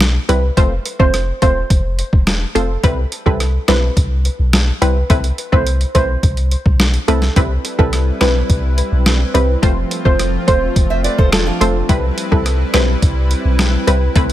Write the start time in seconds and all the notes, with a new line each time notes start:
Already playing: B1
0.00 cross-stick, snare, closed hi-hat
0.29 C2 G3 C4 E4 B4, closed hi-hat
0.57 F1 A3 C4 F4 C5, kick, closed hi-hat
0.85 closed hi-hat
0.99 F1 A3 C4 F4 C5, kick
1.14 cross-stick, closed hi-hat
1.42 E1 A3 C4 F4 C5, kick, closed hi-hat
1.70 F1, kick, closed hi-hat
1.99 closed hi-hat
2.13 E1, kick
2.27 cross-stick, snare, closed hi-hat
2.55 F1 A3 C4 F4 A4 C5, closed hi-hat
2.83 C2 G3 C4 E4 B4, kick, closed hi-hat
3.12 closed hi-hat
3.26 C2 G3 C4 E4 A4 B4, kick
3.40 cross-stick, closed hi-hat
3.68 B1 G3 C4 E4 B4, cross-stick, snare, closed hi-hat
3.97 C2, kick, closed hi-hat
4.25 closed hi-hat
4.39 B1
4.53 cross-stick, snare, closed hi-hat
4.81 C2 G3 C4 E4 B4, closed hi-hat
5.10 C2 A3 C4 E4 B4, kick, closed hi-hat
5.24 closed hi-hat
5.38 closed hi-hat
5.52 C2 A3 C4 E4 B4 C5, kick
5.67 closed hi-hat
5.81 closed hi-hat
5.95 B1 A3 C4 E4 B4 C5, kick, closed hi-hat
6.23 C2, kick, closed hi-hat
6.37 closed hi-hat
6.51 closed hi-hat
6.66 B1, kick
6.80 cross-stick, snare, closed hi-hat
6.94 closed hi-hat
7.08 C2 A3 C4 E4 A4 B4, closed hi-hat
7.22 snare
7.36 C2 G3 C4 E4 B4, kick, closed hi-hat
7.65 closed hi-hat
7.79 C2 G3 C4 E4 A4 B4, kick
7.93 cross-stick, closed hi-hat
8.21 B1 G3 C4 E4 B4, cross-stick, snare, closed hi-hat
8.49 C2, kick, closed hi-hat
8.78 closed hi-hat
8.92 B1
9.06 cross-stick, snare, closed hi-hat
9.34 C2 G3 C4 E4 B4, closed hi-hat
9.62 F1 F3 A3 C4 F4 C5, kick, closed hi-hat
9.91 closed hi-hat
10.05 F1 A3 C4 F4 C5, kick
10.19 cross-stick, closed hi-hat
10.47 E1 A3 C4 F4 C5, kick, closed hi-hat
10.76 F1, kick, closed hi-hat
10.90 C5 E5
11.04 B4 D5, closed hi-hat
11.18 E1 A4 C5, kick
11.32 F4 A4, cross-stick, snare, closed hi-hat
11.47 D4 F4
11.61 F1 A3 C4 F4 A4 C5, closed hi-hat
11.89 C2 G3 C4 E4 B4, kick, closed hi-hat
12.18 closed hi-hat
12.31 C2 G3 C4 E4 A4 B4, kick
12.46 cross-stick, closed hi-hat
12.74 B1 G3 C4 E4 B4, cross-stick, snare, closed hi-hat
13.02 C2, kick, closed hi-hat
13.31 closed hi-hat
13.45 B1
13.59 cross-stick, snare, closed hi-hat
13.87 C2 G3 C4 E4 B4, closed hi-hat
14.15 C2 A3 C4 E4 B4, kick, closed hi-hat